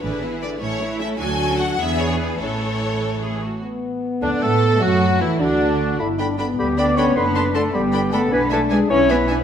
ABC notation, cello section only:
X:1
M:6/8
L:1/8
Q:3/8=102
K:A
V:1 name="Cello section"
E3 E3 | F3 G3 | A3 A G F | [K:D] z3 D, A,2 |
F,2 E, D,3 | z3 G, D C | B,2 A, G,2 A, | [K:Emix] B, A, G, C B,2 |]